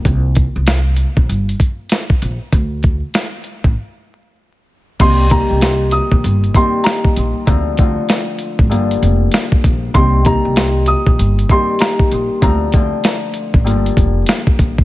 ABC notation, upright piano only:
X:1
M:4/4
L:1/8
Q:"Swing 16ths" 1/4=97
K:Cdor
V:1 name="Upright piano"
z8 | z8 | c' b2 e'2 c' b z | z8 |
c' b2 e'2 c' b z | z8 |]